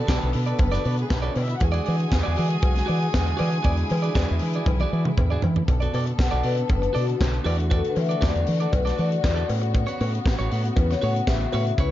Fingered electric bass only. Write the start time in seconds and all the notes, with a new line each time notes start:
0.09 B1
0.23 B1
0.35 B2
0.59 F#1
0.85 B2
1.10 B1
1.36 B2
1.61 E2
1.88 E3
2.12 E2
2.27 E2
2.39 E3
2.63 B1
2.89 E3
3.14 E2
3.40 E3
3.65 E2
3.91 E3
4.15 E2
4.31 E2
4.42 E3
4.66 B1
4.93 E3
5.18 E2
5.44 E3
5.68 B1
5.94 B2
6.19 B1
6.33 B1
6.44 B2
6.70 F#1
6.96 B2
7.21 B1
7.45 E2
7.96 E3
8.22 E2
8.35 E2
8.48 E3
8.73 B1
8.99 E3
9.25 E2
9.49 A2
10.01 A2
10.26 A1
10.39 A1
10.52 A2
10.77 E2
11.03 A2
11.28 A1
11.54 A2
11.78 C#2